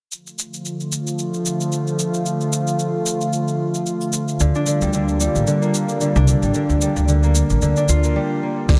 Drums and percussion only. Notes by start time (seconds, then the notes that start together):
0.12 cabasa
0.27 cabasa
0.39 cabasa
0.54 cabasa
0.65 cabasa
0.80 cabasa
0.92 cabasa
1.07 cabasa
1.19 cabasa
1.34 cabasa
1.46 cabasa
1.61 cabasa
1.72 cabasa
1.87 cabasa
1.99 cabasa
2.14 cabasa
2.26 cabasa
2.41 cabasa
2.52 cabasa
2.67 cabasa
2.79 cabasa
3.06 cabasa
3.21 cabasa
3.33 cabasa
3.48 cabasa
3.75 cabasa
3.86 cabasa
4.01 cabasa
4.13 cabasa
4.28 cabasa
4.40 cabasa
4.55 cabasa
4.66 cabasa
4.81 cabasa
4.93 cabasa
5.08 cabasa
5.20 cabasa
5.35 cabasa
5.47 cabasa
5.62 cabasa
5.74 cabasa
5.89 cabasa
6.01 cabasa
6.16 cabasa
6.28 cabasa
6.43 cabasa
6.54 cabasa
6.70 cabasa
6.81 cabasa
6.96 cabasa
7.08 cabasa
7.23 cabasa
7.35 cabasa
7.50 cabasa
7.62 cabasa
7.77 cabasa
7.89 cabasa
8.04 cabasa
8.69 kick, crash, cabasa